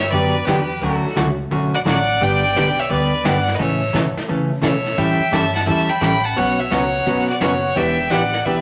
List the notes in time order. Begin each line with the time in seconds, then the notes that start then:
Already playing: G2 C#5
0.00 E5
0.09 F#2 D3 F#3 B3 B4 D5, brush sweep, kick
0.13 D4 G4
0.45 E2 D3 F#3 B3 D4 G4 B4, snare, hi-hat pedal
0.80 D2 D3 F#3 A3 C#4 F#4 A4, brush sweep, kick
1.04 muted upright bass stroke
1.15 C#2 D3 F#3 A3 C#4 F#4, snare, hi-hat pedal
1.51 B1 D3 F#3 A3 C#4 F#4, brush sweep, kick
1.74 D5 F#5
1.85 A1 D3 F#3 A3 C#4 F#4 D5 F#5, snare, hi-hat pedal
2.21 G1 D3 G3 B3 D4 G4 D5 G5, brush sweep, kick
2.54 B1 D3 G3 B3 D4 G4, snare, hi-hat pedal
2.79 C#5 E5
2.90 D2 D3 G3 B3 D4 G4 B4 D5, brush sweep, kick
3.24 G2 D3 G3 B3 D4 G4 D5 F#5, snare, hi-hat pedal
3.48 snare
3.54 B4 D#5
3.59 A2 C#3 E3 A3 C#4 A4 C#5 E5, brush sweep, kick
3.93 B2 C#3 E3 A3 C#4 A4, snare, hi-hat pedal
4.16 muted upright bass stroke, snare
4.28 C#3 E3 A3 C#4 A4, brush sweep, kick
4.62 B2 C#3 E3 A3 C#4 A4 C#5 E5, snare, hi-hat pedal
4.86 snare
4.97 A2 E3 G3 C#4 E4 A4 E5 G5, brush sweep, kick
5.19 muted upright bass stroke
5.31 G2 E3 G3 C#4 E4 A4 E5 A5, snare, hi-hat pedal
5.55 F#5 A5, snare
5.66 E2 E3 G3 C#4 E4 A4 E5 A5, brush sweep, kick
5.89 G5 B5
6.01 A1 E3 G3 C#4 E4 A4 G5 B5, snare, hi-hat pedal
6.23 F#5 A5
6.36 B1 B2 F#3 B3 C#4 F#4 C#5 F#5, brush sweep, kick
6.58 C#5 E5
6.70 C#2 B2 F#3 B3 C#4 F#4 C#5 F#5, snare, hi-hat pedal
7.06 B1 B2 F#3 B3 C#4 F#4, brush sweep, kick
7.27 D5 F#5
7.40 F#1 B2 F#3 B3 C#4 F#4 C#5 F#5, snare, hi-hat pedal
7.74 E1 E3 B3 D4 G4 E5 G5, brush sweep, kick
8.10 A1 E3 B3 D4 G4 D5 F#5, snare, hi-hat pedal
8.34 snare
8.45 B1 E3 B3 D4 G4 B4 E5, brush sweep, kick